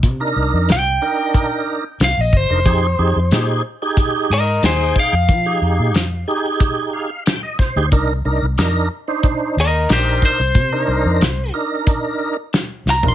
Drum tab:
HH |x---x---x---x---|x---x---x---x---|x---x---x---x---|x---x---x---x---|
SD |----o-------o---|----o-------o---|----o-------o-o-|----o-------o-o-|
FT |----------------|----------------|----------------|----------------|
BD |o-------o-----o-|o-------o-----o-|o-------o-----o-|o-------o-----o-|

HH |x---x---x---x---|
SD |----o-------o-o-|
FT |---------------o|
BD |o-------o-------|